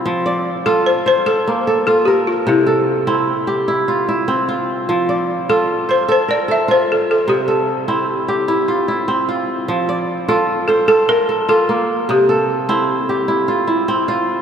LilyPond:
<<
  \new Staff \with { instrumentName = "Balafon" } { \time 12/8 \key f \major \tempo 4. = 100 r4. a'8 c''8 c''8 a'4. a'8 g'8 f'8 | e'2 r1 | r4. a'4 c''8 c''8 d''8 e''8 c''8 a'8 a'8 | g'2. r2. |
r4. f'4 a'8 a'8 bes'4 a'4. | g'1~ g'4 r4 | }
  \new Staff \with { instrumentName = "Kora" } { \time 12/8 \key f \major << { f'8 d''4 a'4 c''4 bes8 a'4 bes'4~ | bes'8 a'4 e'4 g'4 f'8 e'4 f'4~ | f'8 d''4 a'4 c''4 bes'8 a'4. r8 | r8 a'4 e'4 g'4 f'8 e'4 f'4~ |
f'8 d''4 a'4 c''4 bes'8 a'4 bes4~ | bes8 a'4 e'4 g'4 f'8 e'4 f'4 | } \\ { f4 r8 f'4 r8 a'4 r8 f'4 r8 | c4 r8 c'4 r8 e'4 r8 c'4 r8 | f4 r8 f'4 r8 a'4 r8 f'4 r8 | c4 r8 c'4 r8 e'4 r8 c'4 r8 |
f4 r8 f'4 r8 a'4 r8 f'4 r8 | c4 r8 c'4 r8 e'4 r8 c'4 r8 | } >> }
>>